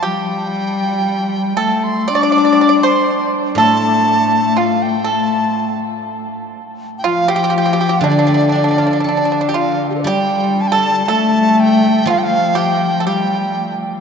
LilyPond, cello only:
\new Staff \with { instrumentName = "Cello" } { \clef bass \time 2/4 \tempo 4 = 60 g4. a8 | d'4 r8 a8~ | a4 a8. r16 | r4 f4 |
d4 d4 | g4 a4 | f4 g8. r16 | }